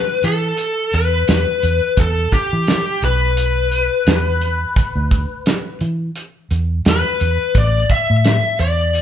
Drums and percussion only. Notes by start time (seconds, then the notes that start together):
0.23 closed hi-hat
0.57 closed hi-hat
0.93 closed hi-hat
1.28 snare, closed hi-hat
1.63 closed hi-hat
1.97 kick, closed hi-hat
2.32 kick, closed hi-hat
2.67 snare, closed hi-hat
3.02 closed hi-hat
3.37 closed hi-hat
3.72 closed hi-hat
4.07 snare, closed hi-hat
4.41 closed hi-hat
4.76 kick, closed hi-hat
5.11 kick, closed hi-hat
5.46 snare, closed hi-hat
5.81 closed hi-hat
6.16 closed hi-hat
6.51 closed hi-hat
6.85 snare, closed hi-hat
7.20 closed hi-hat
7.55 kick, closed hi-hat
7.90 kick, closed hi-hat
8.24 snare, closed hi-hat
8.59 closed hi-hat
8.94 closed hi-hat